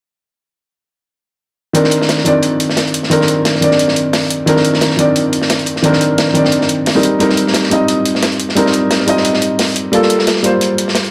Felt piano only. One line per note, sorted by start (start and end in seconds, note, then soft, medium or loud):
1.73 2.23 D#3 medium
1.73 2.24 C4 medium
1.73 2.25 D4 medium
1.73 2.25 A#4 medium
2.25 3.08 D#3 medium
2.25 3.09 C4 medium
2.25 3.10 D4 medium
2.25 3.10 D5 medium
3.10 3.59 D#3 medium
3.10 3.60 C4 medium
3.10 3.61 D4 medium
3.10 3.61 A#4 medium
3.61 4.45 D#3 medium
3.61 4.46 C4 medium
3.61 4.46 D4 medium
3.61 4.47 D5 medium
4.46 4.96 D#3 medium
4.46 4.97 C4 medium
4.46 4.97 D4 medium
4.46 4.98 A#4 loud
4.97 5.81 D#3 medium
4.97 5.82 C4 medium
4.97 5.82 D4 medium
4.97 5.83 D5 medium
5.82 6.32 D#3 medium
5.82 6.33 C4 medium
5.82 6.34 D4 medium
5.82 6.34 A#4 loud
6.34 6.93 D#3 medium
6.34 6.93 C4 medium
6.34 6.94 D4 medium
6.34 6.95 D5 medium
6.95 7.17 G3 medium
6.95 7.18 C4 medium
6.95 7.19 D#4 medium
6.95 7.19 A#4 medium
7.19 7.69 G3 medium
7.19 7.69 C4 medium
7.19 7.70 D#4 medium
7.19 7.71 A#4 medium
7.70 8.54 G3 medium
7.70 8.55 C4 medium
7.70 8.55 D#4 medium
7.70 8.56 D#5 medium
8.55 9.05 G3 medium
8.55 9.06 C4 medium
8.55 9.06 D#4 medium
8.55 9.07 A#4 medium
9.06 9.90 G3 medium
9.06 9.91 C4 medium
9.06 9.92 D#4 medium
9.06 9.92 D#5 medium
9.92 10.41 G3 medium
9.92 10.42 A#3 medium
9.92 10.43 F4 medium
9.92 10.43 A4 medium
10.43 11.11 G3 medium
10.43 11.11 A#3 medium
10.43 11.11 F4 medium
10.43 11.11 C5 medium